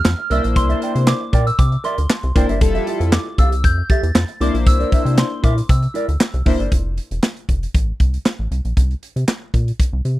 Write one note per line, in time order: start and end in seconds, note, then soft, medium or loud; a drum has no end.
0.00 0.32 F6 loud
0.05 0.15 F2 medium
0.05 muted clean electric guitar stroke soft
0.05 snare loud
0.05 clap medium
0.19 muted clean electric guitar stroke medium
0.30 0.40 C2 loud
0.30 1.13 A#3 medium
0.30 1.13 D4 medium
0.30 1.13 E4 medium
0.30 0.46 A#4 medium
0.30 1.13 C5 medium
0.30 0.44 D5 medium
0.30 0.43 E5 loud
0.30 0.58 E6 loud
0.30 closed hi-hat medium
0.44 0.58 A#1 medium
0.44 muted clean electric guitar stroke soft
0.44 closed hi-hat medium
0.56 0.74 C2 loud
0.56 1.09 C6 loud
0.56 muted clean electric guitar stroke soft
0.56 kick loud
0.56 closed hi-hat loud
0.69 0.80 A#4 medium
0.69 0.81 D5 medium
0.69 0.83 E5 medium
0.69 closed hi-hat soft
0.82 0.94 A#4 medium
0.82 0.94 D5 medium
0.82 0.95 G5 medium
0.82 closed hi-hat medium
0.95 1.14 C3 medium
0.95 muted clean electric guitar stroke medium
0.95 closed hi-hat medium
1.07 1.48 D6 medium
1.07 snare loud
1.07 clap loud
1.21 muted clean electric guitar stroke medium
1.33 1.51 A#2 medium
1.33 1.48 A#4 medium
1.33 1.47 D5 medium
1.33 1.46 G5 loud
1.33 kick medium
1.33 closed hi-hat medium
1.46 1.59 E6 medium
1.46 muted clean electric guitar stroke soft
1.46 closed hi-hat medium
1.59 1.77 C3 loud
1.59 1.85 D6 medium
1.59 kick loud
1.59 closed hi-hat medium
1.72 muted clean electric guitar stroke soft
1.72 closed hi-hat soft
1.84 1.99 A#4 medium
1.84 1.98 D5 medium
1.84 1.97 E5 loud
1.84 2.32 C6 medium
1.84 closed hi-hat medium
1.98 2.07 D2 medium
1.98 muted clean electric guitar stroke medium
1.98 closed hi-hat medium
2.10 muted clean electric guitar stroke soft
2.10 snare loud
2.10 clap loud
2.23 2.32 C2 medium
2.23 muted clean electric guitar stroke medium
2.23 closed hi-hat soft
2.35 2.45 F1 medium
2.35 2.48 A#3 medium
2.35 2.48 D4 medium
2.35 2.49 E4 medium
2.35 2.50 A#4 medium
2.35 2.49 C5 medium
2.35 2.49 D5 medium
2.35 2.49 G5 loud
2.35 kick loud
2.35 closed hi-hat medium
2.49 2.63 G1 medium
2.49 2.61 A#4 medium
2.49 2.61 D5 medium
2.49 2.60 E5 medium
2.49 closed hi-hat medium
2.61 2.79 F1 loud
2.61 3.09 G3 medium
2.61 3.10 E4 medium
2.61 3.10 F4 medium
2.61 3.10 A4 loud
2.61 muted clean electric guitar stroke soft
2.61 kick loud
2.61 closed hi-hat loud
2.75 2.86 G4 medium
2.75 2.87 A4 medium
2.75 2.88 E5 medium
2.75 closed hi-hat soft
2.87 2.99 G4 medium
2.87 3.00 A4 medium
2.87 2.99 E5 medium
2.87 closed hi-hat medium
3.00 3.18 F2 loud
3.00 muted clean electric guitar stroke soft
3.00 closed hi-hat medium
3.12 3.37 D6 medium
3.12 snare loud
3.12 clap loud
3.26 muted clean electric guitar stroke soft
3.38 3.66 C2 medium
3.38 3.54 G4 medium
3.38 3.52 A4 medium
3.38 3.52 F5 medium
3.38 3.65 E6 loud
3.38 kick loud
3.38 closed hi-hat medium
3.52 muted clean electric guitar stroke soft
3.52 closed hi-hat medium
3.64 3.82 F2 loud
3.64 3.88 G6 loud
3.64 kick loud
3.64 closed hi-hat medium
3.78 muted clean electric guitar stroke soft
3.90 4.05 G4 medium
3.90 4.04 A4 medium
3.90 4.02 E5 medium
3.90 4.43 A6 loud
3.90 kick loud
3.90 closed hi-hat medium
4.03 4.12 E2 loud
4.03 muted clean electric guitar stroke medium
4.03 closed hi-hat medium
4.15 4.25 F2 medium
4.15 muted clean electric guitar stroke soft
4.15 snare loud
4.15 clap loud
4.28 muted clean electric guitar stroke soft
4.28 closed hi-hat soft
4.40 4.50 C2 loud
4.40 5.23 A#3 medium
4.40 5.23 D4 medium
4.40 4.56 E4 medium
4.40 5.23 E4 medium
4.40 4.54 A#4 medium
4.40 5.24 C5 medium
4.40 4.53 D5 medium
4.40 4.68 D6 loud
4.40 closed hi-hat medium
4.54 4.68 A#1 medium
4.54 muted clean electric guitar stroke medium
4.54 closed hi-hat medium
4.66 4.85 C2 loud
4.66 5.15 E6 loud
4.66 muted clean electric guitar stroke soft
4.66 kick loud
4.66 closed hi-hat loud
4.79 4.91 E4 medium
4.79 4.92 A#4 medium
4.79 4.93 D5 medium
4.79 closed hi-hat soft
4.92 5.04 E4 medium
4.92 5.05 A#4 medium
4.92 5.05 E5 medium
4.92 kick medium
4.92 closed hi-hat medium
5.05 5.24 C3 loud
5.05 muted clean electric guitar stroke medium
5.05 closed hi-hat medium
5.18 5.45 C6 medium
5.18 snare loud
5.18 clap loud
5.31 muted clean electric guitar stroke soft
5.42 5.62 A#2 medium
5.42 5.58 E4 medium
5.42 5.57 A#4 loud
5.42 5.56 E5 loud
5.42 5.55 D6 medium
5.42 kick medium
5.42 closed hi-hat medium
5.57 muted clean electric guitar stroke soft
5.57 closed hi-hat medium
5.69 5.87 C3 loud
5.69 6.42 E6 medium
5.69 kick loud
5.69 closed hi-hat loud
5.82 muted clean electric guitar stroke soft
5.82 closed hi-hat soft
5.94 6.10 E4 medium
5.94 6.08 A#4 medium
5.94 6.07 D5 medium
5.94 closed hi-hat medium
6.08 6.17 D2 medium
6.08 muted clean electric guitar stroke soft
6.08 closed hi-hat medium
6.20 muted clean electric guitar stroke soft
6.20 snare loud
6.20 clap loud
6.34 6.42 C2 medium
6.34 muted clean electric guitar stroke soft
6.34 closed hi-hat soft
6.46 6.56 F1 medium
6.46 6.59 A#3 loud
6.46 6.59 D4 medium
6.46 6.60 E4 medium
6.46 6.59 E4 medium
6.46 6.59 A#4 medium
6.46 6.59 C5 loud
6.46 6.59 E5 medium
6.46 kick loud
6.46 open hi-hat medium
6.59 6.68 G1 loud
6.59 6.71 E4 soft
6.59 6.71 A#4 medium
6.59 6.70 D5 medium
6.59 closed hi-hat soft
6.72 7.00 F1 loud
6.72 kick loud
6.72 closed hi-hat medium
6.98 closed hi-hat medium
7.11 7.20 E1 medium
7.11 closed hi-hat medium
7.23 snare loud
7.23 clap medium
7.37 closed hi-hat soft
7.49 7.67 F1 medium
7.49 kick medium
7.49 closed hi-hat medium
7.63 closed hi-hat medium
7.75 7.93 A1 loud
7.75 kick loud
7.75 closed hi-hat medium
8.00 8.18 C2 medium
8.00 kick medium
8.00 closed hi-hat medium
8.14 closed hi-hat soft
8.26 snare loud
8.26 clap medium
8.39 8.48 A1 medium
8.51 8.61 C2 loud
8.51 closed hi-hat medium
8.65 8.73 A#1 medium
8.65 closed hi-hat soft
8.77 8.95 C2 loud
8.77 kick medium
8.77 closed hi-hat medium
8.91 closed hi-hat soft
9.03 closed hi-hat medium
9.16 9.25 C3 medium
9.16 closed hi-hat medium
9.28 snare loud
9.28 clap loud
9.54 9.72 A#2 medium
9.54 kick medium
9.54 closed hi-hat medium
9.68 closed hi-hat medium
9.80 kick loud
9.80 closed hi-hat medium
9.93 10.01 C2 medium
10.05 10.19 C3 medium
10.05 closed hi-hat medium